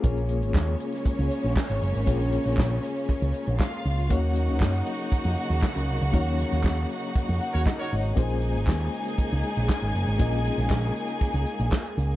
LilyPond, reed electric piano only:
\new Staff \with { instrumentName = "Reed electric piano" } { \time 4/4 \key bes \minor \tempo 4 = 118 << { r1 | r1 | r1 | r2 r8 ges''8 ees''8 des''8 |
r1 | r1 | } \\ { <bes des' f' aes' des''>1 | <bes des' f' aes' des''>1 | <bes des' ees' ges' des''>1 | <bes des' ees' ges' des''>1 |
<bes des' f' aes' c''>1 | <bes des' f' aes' ees''>1 | } >> }